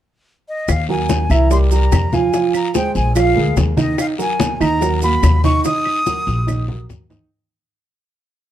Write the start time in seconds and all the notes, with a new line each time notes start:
0.48 D#5
0.68 D#2 F5, high bongo, high conga, long guiro, claves, maracas
0.89 F#3 F#4 A#4 G#5, high bongo, high conga
1.09 high bongo, high conga, short guiro, maracas
1.30 C2 E3 E4 E5 A#5, high bongo, short guiro, claves, maracas
1.51 G3 G4 A#4 C6, high bongo, high conga, long guiro, maracas
1.71 G3 G4 A#4 A#5, high conga, maracas
1.92 F2, high bongo, low bongo, high conga, short guiro, claves, maracas
2.13 F3 F4 F5 G#5, high bongo, high conga, short guiro, maracas
2.33 F3 F4 F5, high bongo, high conga, long guiro, maracas
2.54 A#5, high bongo, high conga, claves, maracas
2.74 G#3 G#4 C5 G5, high bongo, high conga, short guiro, maracas
2.95 A#1 G#5, high bongo, high conga, short guiro, maracas
3.15 F3 F4 F5, high bongo, high conga, long guiro, claves, maracas
3.36 D2 G#3 G#4 A#4, high bongo, high conga
3.57 D#2, high bongo, low bongo, high conga, short guiro, maracas
3.77 D#3 D#4 D#5, high conga, short guiro, maracas
3.98 F5, high bongo, high conga, long guiro, claves, maracas
4.18 F#3 F#4 A#4 G#5, high bongo, high conga, maracas
4.40 high bongo, high conga, short guiro, maracas
4.60 D#2 D#3 D#4 D#5 A#5, high bongo, short guiro, claves, maracas
4.81 F#3 F#4 A#4, high bongo, high conga, long guiro, maracas
5.02 F#3 A#3 F#4 B5, high conga, maracas
5.23 D#2, high bongo, low bongo, high conga, short guiro, claves, maracas
5.44 D#3 D#4 D#5 C#6, high bongo, high conga, short guiro, maracas
5.64 D#3 D#4 D#5 D#6, high bongo, high conga, long guiro, maracas
5.85 high bongo, high conga, claves
6.06 F#3 F#4 A#4, high bongo, high conga, short guiro, maracas
6.27 A#1, high bongo, high conga, short guiro, maracas
6.47 D#3 D#4 D#5, high bongo, high conga, long guiro, claves, maracas
6.68 F#3 F#4 A#4, high bongo, high conga
6.89 D#2, high bongo, low bongo, low conga, short guiro, maracas
7.10 D#3 D#4 D#5, low conga, short guiro, maracas